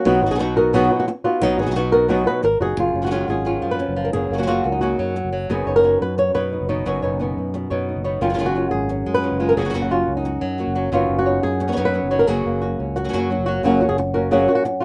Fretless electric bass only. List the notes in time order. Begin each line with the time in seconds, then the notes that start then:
0.05 B1
0.22 G#1
0.31 B1
1.42 B1
1.58 G#1
1.67 B1
2.43 G#1
2.60 F#1
2.77 F#1
2.94 F#1
3.28 G#1
3.63 F#2
3.88 F#1
4.13 F#1
4.30 F#1
4.65 C#2
4.99 F#2
5.24 F#1
5.50 F#1
5.67 F#1
6.01 F#2
6.35 F#2
6.61 F#1
6.86 F#1
7.03 F#1
7.37 F#2
7.70 F#2
7.96 F#1
8.21 F#1
8.38 F#1
8.73 G#1
9.06 F#2
9.32 F#1
9.57 F#1
9.74 F#1
10.07 C#2
10.42 F#2
10.67 F#1
10.92 F#1
11.09 F#1
11.43 F#2
11.77 F#2
12.03 F#1
12.28 F#1
12.46 F#1
12.79 C#2
13.13 F#2
13.38 F#1
13.63 F#1
13.81 D#2
13.89 F#1